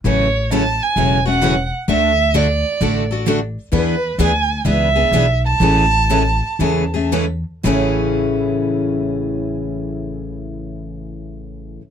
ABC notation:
X:1
M:4/4
L:1/8
Q:"Swing" 1/4=124
K:A
V:1 name="Violin"
c2 a g2 f2 z | e2 d4 z2 | B2 g2 e3 a- | a6 z2 |
z8 | z8 |]
V:2 name="Steel-string acoustic guitar"
[C,F,CE] z [C,F,CE] z [C,F,CE] z [C,F,CE] z | [D,A,DFA] z [D,A,DFA] z [D,A,DFA] z [D,A,DFA] z | [E,B,DGB] z [E,B,DGB] z [E,B,DGB] z [E,B,DGB] z | [E,G,CEA] z [E,G,CEA] z [E,G,CEA] z [E,G,CEA] z |
[A,,E,CE]8- | [A,,E,CE]8 |]
V:3 name="Steel-string acoustic guitar"
[C,E,A,CF] z [C,E,A,CF] z [C,E,A,CF] [A,CF] [C,E,A,CF] z | [D,A,DFA] z [D,A,DFA] z [D,A,DFA] [DFA] [D,A,DFA] z | [E,B,DG] z [E,B,DG] z [E,B,DG] [B,DG] [E,B,DG] z | [C,E,A,CG] z [C,E,A,CG] z [C,E,A,CG] [A,CG] [C,E,A,CG] z |
[A,,C,E,A,CG]8- | [A,,C,E,A,CG]8 |]
V:4 name="Upright bass" clef=bass
A,,,4 E,,,4 | D,,4 A,,,4 | E,,2 D,,2 C,,2 B,,,2 | A,,,4 E,,4 |
A,,,8- | A,,,8 |]